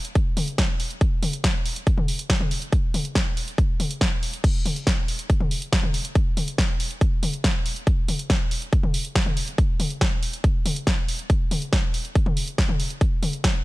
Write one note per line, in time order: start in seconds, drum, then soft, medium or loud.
0.05 closed hi-hat medium
0.15 kick loud
0.15 closed hi-hat medium
0.37 open hi-hat loud
0.37 mid tom medium
0.48 closed hi-hat medium
0.58 kick loud
0.58 snare loud
0.58 closed hi-hat medium
0.80 open hi-hat medium
0.91 closed hi-hat medium
1.01 kick loud
1.01 closed hi-hat medium
1.23 open hi-hat loud
1.23 mid tom medium
1.33 closed hi-hat medium
1.44 kick loud
1.44 snare loud
1.44 closed hi-hat medium
1.66 open hi-hat medium
1.76 closed hi-hat medium
1.87 kick loud
1.87 closed hi-hat medium
1.98 mid tom medium
2.08 open hi-hat loud
2.19 closed hi-hat medium
2.30 kick loud
2.30 snare loud
2.30 closed hi-hat medium
2.40 mid tom medium
2.51 open hi-hat medium
2.62 closed hi-hat medium
2.73 kick loud
2.73 closed hi-hat medium
2.94 open hi-hat loud
2.94 mid tom medium
3.05 closed hi-hat medium
3.15 kick loud
3.15 snare loud
3.15 closed hi-hat medium
3.37 open hi-hat medium
3.48 closed hi-hat medium
3.58 kick loud
3.58 closed hi-hat medium
3.80 open hi-hat loud
3.80 mid tom medium
3.91 closed hi-hat medium
4.01 kick loud
4.01 snare loud
4.01 closed hi-hat medium
4.23 open hi-hat medium
4.33 closed hi-hat medium
4.44 kick loud
4.44 closed hi-hat medium
4.44 crash medium
4.66 open hi-hat loud
4.66 mid tom medium
4.76 closed hi-hat medium
4.87 kick loud
4.87 snare loud
4.87 closed hi-hat medium
5.08 open hi-hat medium
5.19 closed hi-hat medium
5.30 kick loud
5.30 closed hi-hat medium
5.40 mid tom medium
5.51 open hi-hat loud
5.62 closed hi-hat medium
5.73 kick loud
5.73 snare loud
5.73 closed hi-hat medium
5.83 mid tom medium
5.94 open hi-hat loud
6.05 closed hi-hat medium
6.15 kick loud
6.15 closed hi-hat medium
6.37 open hi-hat loud
6.37 mid tom medium
6.48 closed hi-hat medium
6.58 kick loud
6.58 snare loud
6.58 closed hi-hat medium
6.80 open hi-hat loud
6.91 closed hi-hat medium
7.01 kick loud
7.01 closed hi-hat medium
7.23 open hi-hat loud
7.23 mid tom medium
7.33 closed hi-hat medium
7.44 kick loud
7.44 snare loud
7.44 closed hi-hat medium
7.66 open hi-hat loud
7.76 closed hi-hat medium
7.87 kick loud
7.87 closed hi-hat medium
8.08 open hi-hat loud
8.08 mid tom medium
8.19 closed hi-hat medium
8.30 kick loud
8.30 snare loud
8.30 closed hi-hat medium
8.51 open hi-hat loud
8.62 closed hi-hat medium
8.73 kick loud
8.73 closed hi-hat medium
8.83 mid tom medium
8.94 open hi-hat loud
9.05 closed hi-hat medium
9.15 kick loud
9.15 snare loud
9.15 closed hi-hat medium
9.26 mid tom medium
9.37 open hi-hat loud
9.48 closed hi-hat medium
9.58 kick loud
9.58 closed hi-hat medium
9.80 open hi-hat loud
9.80 mid tom medium
9.90 closed hi-hat medium
10.01 kick loud
10.01 snare loud
10.01 closed hi-hat medium
10.23 open hi-hat loud
10.33 closed hi-hat medium
10.44 kick loud
10.44 closed hi-hat medium
10.66 open hi-hat loud
10.66 mid tom medium
10.76 closed hi-hat medium
10.87 kick loud
10.87 snare loud
10.87 closed hi-hat medium
11.09 open hi-hat loud
11.19 closed hi-hat medium
11.30 kick loud
11.30 closed hi-hat medium
11.51 open hi-hat loud
11.51 mid tom medium
11.62 closed hi-hat medium
11.73 kick loud
11.73 snare loud
11.73 closed hi-hat medium
11.94 open hi-hat medium
12.05 closed hi-hat medium
12.15 kick loud
12.15 closed hi-hat medium
12.26 mid tom medium
12.37 open hi-hat loud
12.48 closed hi-hat medium
12.58 kick loud
12.58 snare loud
12.58 closed hi-hat medium
12.69 mid tom medium
12.80 open hi-hat loud
12.90 closed hi-hat medium
13.01 kick loud
13.01 closed hi-hat medium
13.23 open hi-hat loud
13.23 mid tom medium
13.33 closed hi-hat medium
13.44 kick loud
13.44 snare loud
13.44 closed hi-hat medium